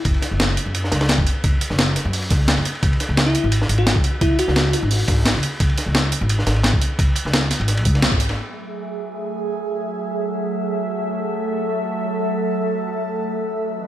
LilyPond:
<<
  \new Staff \with { instrumentName = "Analog synth pad" } { \time 4/4 \key fis \minor \tempo 4 = 173 << { r1 | r1 | r1 | r1 |
r1 | r1 | <fis a e''>1~ | <fis a e''>1~ |
<fis a e''>1~ | <fis a e''>2.~ <fis a e''>8 <e cis' dis''>8 | } \\ { r1 | r1 | r1 | r1 |
r1 | r1 | gis'1~ | gis'1 |
a'1~ | a'2.~ a'8 b'8 | } >> }
  \new Staff \with { instrumentName = "FM electric piano" } { \time 4/4 \key fis \minor r1 | r1 | r4 r16 e'8 r4 fis'16 fis'16 r8. | e'8 fis'4. r2 |
r1 | r1 | r1 | r1 |
r1 | r1 | }
  \new Staff \with { instrumentName = "Upright bass" } { \clef bass \time 4/4 \key fis \minor fis,,16 r8 fis,,8. r16 fis,8. cis,8. fis,,16 r8 | fis,,16 r8 fis,,8. r16 fis,8. cis,8. fis,,16 r8 | cis,16 r8 cis,8. r16 gis,,8. gis,,8. cis,16 r8 | cis,16 r8 cis,8. r16 gis,,8. gis,,8. cis,16 r8 |
cis,16 r8 cis,8. r16 gis,,8. gis,,8. cis,16 r8 | cis,16 r8 cis,8. r16 gis,,8. cis,8. gis,,8. | r1 | r1 |
r1 | r1 | }
  \new DrumStaff \with { instrumentName = "Drums" } \drummode { \time 4/4 <hh bd cymr>16 cymr16 <hh cymr sn>8 <hh cymr sn>8 <hh cymr>8 <hh cymr>16 sn16 <hh cymr sn>16 <cymr sn>16 <hh cymr sn>16 <bd cymr>16 <hh cymr>8 | <hh bd cymr>8 <hh cymr>16 sn16 <hh cymr sn>8 <hh cymr sn>8 <hh hho>16 cymr16 <hh bd cymr sn>8 <hh cymr sn>16 cymr16 <hh cymr>16 cymr16 | <hh bd cymr>16 cymr16 <hh cymr sn>8 <hh cymr sn>8 <hh cymr>8 <hh cymr>16 sn16 <hh cymr>16 cymr16 <hh cymr sn>16 <bd cymr>16 <hh cymr>8 | <hh bd cymr>8 <hh cymr>16 sn16 <hh cymr sn>8 <hh cymr sn>8 <hh hho>16 cymr16 <hh bd cymr sn>8 <hh cymr sn>16 cymr16 <hh cymr>8 |
<hh bd cymr>16 cymr16 <hh cymr sn>8 <hh cymr sn>8 <hh cymr>8 <hh cymr>16 sn16 <hh cymr sn>16 cymr16 <hh cymr sn>16 <bd cymr>16 <hh cymr>8 | <hh bd cymr>8 <hh cymr>16 sn16 <hh cymr sn>8 <hh cymr sn>16 cymr16 <hh cymr sn>16 cymr16 <hh bd cymr>16 <cymr sn>16 <hh cymr sn>16 <bd cymr>16 <hh cymr>16 <cymr sn>16 | r4 r4 r4 r4 | r4 r4 r4 r4 |
r4 r4 r4 r4 | r4 r4 r4 r4 | }
>>